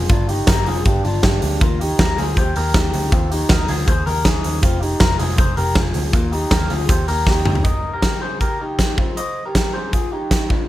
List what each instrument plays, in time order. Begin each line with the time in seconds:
0.09 picked electric bass G1, clean electric guitar D4 F4, kick, closed hi-hat
0.29 clean electric guitar D#4 G4, open hi-hat
0.47 picked electric bass G1, clean electric guitar G4 A#4, kick, snare, closed hi-hat
0.66 picked electric bass F1, clean electric guitar F4 G#4, open hi-hat
0.85 picked electric bass G1, clean electric guitar D4 G4, kick, closed hi-hat
1.04 picked electric bass G1, clean electric guitar D4 F4, open hi-hat
1.23 picked electric bass G1, clean electric guitar D4 G4, kick, snare, closed hi-hat
1.42 picked electric bass D2, open hi-hat
1.61 picked electric bass D#2, clean electric guitar A#3 F4, kick, closed hi-hat
1.81 clean electric guitar D#4 G4, open hi-hat
1.99 picked electric bass D#2, clean electric guitar G4 A#4, kick, snare, closed hi-hat
2.18 picked electric bass D2, clean electric guitar F4 G#4, open hi-hat
2.37 picked electric bass D#2, clean electric guitar G4 C5, kick, closed hi-hat
2.56 picked electric bass D#2, clean electric guitar G4 A#4, open hi-hat
2.74 picked electric bass D#2, clean electric guitar D#4 G4, kick, snare, closed hi-hat
2.94 picked electric bass D2, open hi-hat
3.12 picked electric bass D#2, clean electric guitar C4 F4, kick, closed hi-hat
3.31 clean electric guitar D#4 G4, open hi-hat
3.49 picked electric bass D#2, clean electric guitar D#4 A#4, kick, snare, closed hi-hat
3.68 picked electric bass D2, clean electric guitar F4 G#4, open hi-hat
3.88 picked electric bass D#2, clean electric guitar G#4 C5, kick, closed hi-hat
4.06 picked electric bass D#2, clean electric guitar G4 A#4, open hi-hat
4.25 picked electric bass D#2, clean electric guitar D#4 G#4, kick, snare, closed hi-hat
4.44 picked electric bass D#2, open hi-hat
4.62 picked electric bass F1, clean electric guitar C4 F4, kick, closed hi-hat
4.81 clean electric guitar D#4 G4, open hi-hat
5.00 picked electric bass F1, clean electric guitar F4 A#4, kick, snare, closed hi-hat
5.19 picked electric bass F1, clean electric guitar F4 G#4, open hi-hat
5.38 picked electric bass F1, clean electric guitar G#4 C5, kick, closed hi-hat
5.57 picked electric bass F1, clean electric guitar G4 A#4, open hi-hat
5.75 picked electric bass F1, clean electric guitar F4 G#4, kick, snare, closed hi-hat
5.94 picked electric bass D2, open hi-hat
6.13 picked electric bass D#2, clean electric guitar A#3 F4, kick, closed hi-hat
6.32 clean electric guitar D#4 G4, open hi-hat
6.51 picked electric bass D#2, clean electric guitar G4 A#4, kick, snare, closed hi-hat
6.70 picked electric bass D2, clean electric guitar F4 G#4, open hi-hat
6.89 picked electric bass D#2, clean electric guitar G4 C5, kick, closed hi-hat
7.08 picked electric bass D#2, clean electric guitar G4 A#4, open hi-hat
7.27 picked electric bass D#2, clean electric guitar D#4 G4, kick, snare
7.45 picked electric bass D2, mid tom
7.55 floor tom
7.64 clean electric guitar A#4 D#5, kick, closed hi-hat
7.94 clean electric guitar G4 A#4
8.02 kick, snare, closed hi-hat
8.22 clean electric guitar G#4 C5
8.41 clean electric guitar G4 A#4, kick, closed hi-hat
8.60 clean electric guitar D#4 G4
8.79 kick, snare, closed hi-hat
8.98 clean electric guitar C4 F4, kick
9.17 clean electric guitar C5 D#5, closed hi-hat
9.45 clean electric guitar G4 A#4
9.55 kick, snare, closed hi-hat
9.74 clean electric guitar G#4 C5
9.93 clean electric guitar F4 G#4, kick, closed hi-hat
10.12 clean electric guitar D#4 G4
10.31 kick, snare, closed hi-hat
10.50 clean electric guitar D4 F4, kick